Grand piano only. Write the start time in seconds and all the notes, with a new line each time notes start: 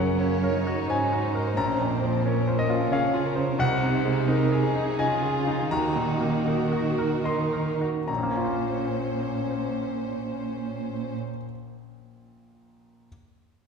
Already playing: F#2 C#3 F#3 F#5
0.20 C#4
0.44 A#4
0.67 F#4
0.89 C#4 G#5
1.13 F#4
1.35 A#4
1.57 A#1 A#5
1.79 F2
2.03 F3
2.25 C#4
2.48 C5
2.59 D#5
2.70 F4
2.92 C#5 F5
3.14 F4
3.36 C5
3.59 C2 F#5
3.83 C3
4.05 G#3
4.28 D#4
4.52 G#4
4.76 D#4
4.99 D#5 G#5
5.22 G#4
5.47 D#4
5.71 D#2 A#5
5.96 A#2
6.21 A#3
6.46 D#4
6.72 F#4
6.98 A#4
7.24 D#5 C6
7.53 A#4
7.81 F#4
8.08 A#1 A#5
8.16 A#2
8.23 A#3
8.30 C#4
8.37 F4
8.44 C5